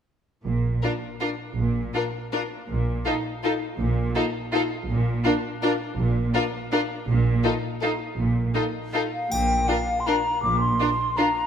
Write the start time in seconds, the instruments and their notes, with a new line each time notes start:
0.46 double bass section A#1, cello section A#2
0.83 viola section D4, violin section F4 A#4
1.21 viola section D4, violin section F4 A#4
1.57 double bass section A#1, cello section A#2
1.94 viola section D4, violin section F4 A#4
2.33 viola section D4, violin section F4 A#4
2.68 double bass section A#1, cello section A#2
3.05 viola section D#4, violin section F4 A4
3.43 viola section D#4, violin section F4 A4
3.79 double bass section A#1, cello section A#2
4.15 viola section D#4, violin section F4 A4
4.53 viola section D#4, violin section F4 A4
4.88 double bass section A#1, cello section A#2
5.24 viola section D4, violin section F4 A#4
5.62 viola section D4, violin section F4 A#4
5.98 double bass section A#1, cello section A#2
6.34 viola section D4, violin section F4 A#4
6.72 viola section D4, violin section F4 A#4
7.08 double bass section A#1, cello section A#2
7.44 viola section D#4, violin section F4 A4
7.82 viola section D#4, violin section F4 A4
8.18 double bass section A#1, cello section A#2
8.54 viola section D#4, violin section F4 A4
8.93 viola section D#4, violin section F4 A4
9.13 flute F5
9.31 double bass section A#1, cello section A#2, flute G5, triangle
9.68 viola section D4, violin section F4 A#4, flute F5
10.00 flute C6
10.06 viola section D4, violin section F4 A#4, flute A#5
10.43 double bass section A#1, cello section A#2, flute D6
10.60 flute C6
10.80 viola section D4, violin section F4 A#4
11.17 viola section D4, violin section F4 A#4, flute A#5